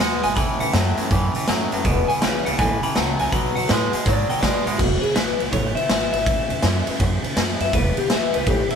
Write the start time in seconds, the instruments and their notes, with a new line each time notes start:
0.00 upright bass D#2, clean electric guitar B2 G#3 F#5, steel-string acoustic guitar B2 F#3 B3 D#4 F#4
0.23 upright bass G#1, clean electric guitar B2 G#3 G#5, steel-string acoustic guitar F#4, closed hi-hat
0.27 steel-string acoustic guitar B3 D#4
0.36 upright bass A1, clean electric guitar A2 E3 B5, steel-string acoustic guitar A2 E3 A3 C#4 E4, kick, closed hi-hat
0.59 upright bass E2, clean electric guitar A2 E3 F#5, steel-string acoustic guitar C#4 E4, closed hi-hat
0.64 steel-string acoustic guitar A3
0.73 upright bass F#2, clean electric guitar A2 F#3 E5, steel-string acoustic guitar A2 E3 A3 C#4 E4, snare, closed hi-hat
0.97 clean electric guitar A2 F#3, steel-string acoustic guitar A3 C#4 E4, muted upright bass stroke, closed hi-hat
1.11 upright bass F#2, clean electric guitar A2 E3, steel-string acoustic guitar E3 A3 C#4 E4, kick, closed hi-hat
1.35 clean electric guitar A2 E3, steel-string acoustic guitar A3 C#4 E4, muted upright bass stroke, closed hi-hat
1.47 upright bass F#2, steel-string acoustic guitar A2 E3 A3 C#4 E4, clean electric guitar A2 F#3, snare, closed hi-hat
1.71 upright bass F#2, clean electric guitar A2 F#3, steel-string acoustic guitar A3 C#4 E4, closed hi-hat
1.84 upright bass E1, steel-string acoustic guitar E2 B2 E3 G#3 B3 E4, clean electric guitar E2 B2, kick, closed hi-hat
2.08 clean electric guitar E2 B2 G#5, steel-string acoustic guitar E3 G#3 B3 E4, muted upright bass stroke, closed hi-hat
2.21 upright bass A1, steel-string acoustic guitar E2 B2 E3 G#3 B3 E4, clean electric guitar E2 C#3 B5, snare, closed hi-hat
2.45 upright bass C#2, clean electric guitar E2 C#3 F#5, steel-string acoustic guitar E3 G#3 B3 E4, closed hi-hat
2.58 upright bass A1, clean electric guitar A2 E3 G#5, steel-string acoustic guitar E3 A3 C#4 E4, kick, closed hi-hat
2.82 clean electric guitar A2 E3 B5, steel-string acoustic guitar A3 C#4 E4, muted upright bass stroke, closed hi-hat
2.95 upright bass C#2, steel-string acoustic guitar A2 E3 A3 C#4 E4, clean electric guitar A2 F#3 F#5, snare, closed hi-hat
3.19 upright bass C#2, clean electric guitar A2 F#3 G#5, steel-string acoustic guitar A3 C#4 E4, closed hi-hat
3.32 upright bass B1, steel-string acoustic guitar B2 F#3 B3 D#4 F#4, clean electric guitar B2 F#3 B5, kick, closed hi-hat
3.55 upright bass F#2, clean electric guitar B2 F#3 F#5, steel-string acoustic guitar B3 D#4 F#4, closed hi-hat
3.68 upright bass A2, steel-string acoustic guitar B2 F#3 B3 F#4, clean electric guitar B2 G#3 B4, snare, closed hi-hat
3.91 clean electric guitar B2 G#3, steel-string acoustic guitar B3 D#4 F#4, muted upright bass stroke, closed hi-hat
4.04 upright bass G#2, clean electric guitar B2 F#3 D5, steel-string acoustic guitar F#3 B3 D#4 F#4, kick, closed hi-hat
4.29 clean electric guitar B2 F#3 G5, steel-string acoustic guitar B3 D#4 F#4, muted upright bass stroke, closed hi-hat
4.41 upright bass A2, steel-string acoustic guitar B2 F#3 B3 D#4 F#4, clean electric guitar B2 G#3 D5, kick, snare, closed hi-hat
4.66 upright bass G#2, clean electric guitar B2 G#3 E5, steel-string acoustic guitar B3 D#4 F#4, closed hi-hat
4.78 upright bass E1, steel-string acoustic guitar E2 B2 E3 G#3 B3 E4, clean electric guitar F#4, kick, crash
5.02 steel-string acoustic guitar E3 G#3 B3 E4, clean electric guitar G#4, muted upright bass stroke, ride
5.15 upright bass A1, steel-string acoustic guitar E2 B2 E3 G#3 B3 E4, clean electric guitar B4, snare, ride
5.40 upright bass C#2, steel-string acoustic guitar E3 G#3 B3 E4, ride
5.52 upright bass A1, steel-string acoustic guitar E3 G#3 B3 E4, clean electric guitar C#5, kick, ride
5.75 steel-string acoustic guitar G#3 B3 E4, clean electric guitar E5, muted upright bass stroke, ride
5.80 steel-string acoustic guitar E3
5.89 upright bass G#1, steel-string acoustic guitar E2 B2 E3 G#3 B3 E4, snare, ride
6.13 upright bass G#1, steel-string acoustic guitar E3 G#3 B3 E4, clean electric guitar E5, ride
6.26 upright bass A1, steel-string acoustic guitar A2 E3 A3 C#4 E4, kick, ride
6.50 upright bass E2, steel-string acoustic guitar A3 C#4 E4, ride
6.63 upright bass F#2, steel-string acoustic guitar A2 E3 A3 C#4 E4, snare, ride
6.87 steel-string acoustic guitar A3 C#4 E4, muted upright bass stroke, ride
7.00 upright bass F#2, steel-string acoustic guitar E3 A3 C#4 E4, kick, ride
7.23 steel-string acoustic guitar A3 C#4 E4, muted upright bass stroke, ride
7.36 upright bass F#2, steel-string acoustic guitar A2 E3 A3 C#4 E4, snare, ride
7.60 upright bass F#2, steel-string acoustic guitar A3 C#4 E4, clean electric guitar E5, ride
7.73 upright bass E1, steel-string acoustic guitar E2 B2 E3 G#3 B3 E4, clean electric guitar B4, kick, ride
7.97 steel-string acoustic guitar E3 G#3 B3 E4, clean electric guitar G4, muted upright bass stroke, ride
8.10 upright bass A1, steel-string acoustic guitar E2 B2 E3 G#3 B3 E4, clean electric guitar E5, snare, ride
8.33 upright bass C#2, steel-string acoustic guitar E3 G#3 B3 E4, clean electric guitar B4, ride
8.46 upright bass A1, steel-string acoustic guitar E3 G#3 B3 E4, clean electric guitar G4, kick, ride
8.70 steel-string acoustic guitar G#3 B3 E4, clean electric guitar E5, muted upright bass stroke, ride